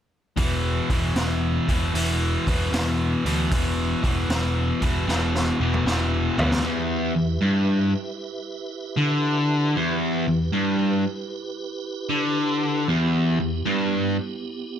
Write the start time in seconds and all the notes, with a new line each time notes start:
0.36 E1 E2 B2 E3, kick, open hi-hat
0.90 E1 E2 B2 E3, kick, open hi-hat
1.16 E1 E2 B2 E3, snare, open hi-hat
1.68 E1 E2 B2 E3, kick, open hi-hat
1.94 E1 E2 B2 E3, open hi-hat
2.47 E1 E2 B2 E3, kick, open hi-hat
2.72 E1 E2 B2 E3, snare, open hi-hat
3.25 D2 E2 B2 E3, open hi-hat
3.51 E1 E2 B2 E3, kick, open hi-hat
4.03 E1 E2 B2 E3, kick, open hi-hat
4.29 E1 E2 B2 E3, snare, open hi-hat
4.81 E1 E2 B2 E3, kick, open hi-hat
5.07 E1 E2 B2 E3, snare
5.35 snare
5.60 E1 E2 B2 E3
5.74 mid tom
5.85 E1 E2 B2 E3, snare
6.37 D2 E2 B2 E3, floor tom
6.52 snare
6.63 E2 E4 G4 B4 E5
7.16 E2
7.42 G2
8.97 D3
9.76 E2 E4 G4 B4
10.28 E2
10.53 G2
12.10 D3
12.88 E2 B3 E4 G4
13.40 E2
13.65 G2